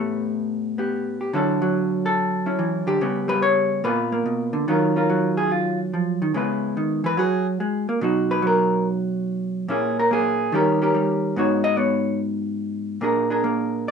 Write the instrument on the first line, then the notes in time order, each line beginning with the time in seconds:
hollow-body jazz guitar
Already playing: A2 E3 A3 B3 G4 B4
0.78 B3 G4
1.21 G4
1.33 D3 F#3 C#4 E4 A4
1.62 F#3
2.06 A4
2.46 C#4 E4
2.59 E3
2.87 D3 G4
3.01 C#3 G3 B3
3.28 G3 B4
3.42 C#5
3.84 A#2 A#3 B3 F4 B4
4.12 A#3
4.26 B2
4.53 D3
4.68 D#3 F#3 C#4 F4 A#4
4.96 C#4 F4 A#4
5.10 F#3
5.37 G#4
5.52 F4
5.94 F3
6.22 D#3
6.34 C#3 G#3 B3 E4 B4
6.77 D#3
7.04 E3 B4
7.17 F#3 F#4 G#4
7.60 G#3
7.89 A#3
8.01 B2 F#3 D#4 F#4
8.31 B4
8.42 F#3
8.47 A#4
9.68 A#2 A#3 C#4 E4 G#4
9.99 A#4
10.11 A#3 G#4
10.52 D#3 G3 C#4 G4 A#4
10.82 C#4 G4 A#4
10.94 G3
11.36 G#2 B3 D#4 F#4 C#5
11.64 D#5
11.77 B3 C#5
13.01 A#2 A#3 D4 G#4 A#4
13.30 D4 G#4 A#4
13.44 A#3